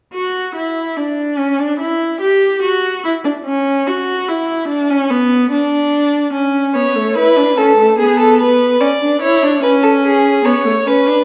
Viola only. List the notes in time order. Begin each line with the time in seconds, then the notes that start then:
0.14 F#4
0.55 E4
0.97 D4
1.38 C#4
1.59 D4
1.80 E4
2.21 G4
2.63 F#4
3.04 E4
3.25 D4
3.46 C#4
3.87 F#4
4.28 E4
4.68 D4
4.90 C#4
5.10 B3
5.51 D4
6.34 C#4
6.75 B3
6.95 A3
7.16 E4
7.36 D4
7.57 C#4
7.77 A3
7.98 B3
8.80 C#4
9.01 D4
9.22 E4
9.43 D4
9.63 C#4
10.45 B3
10.65 A3
10.86 C#4
11.07 D4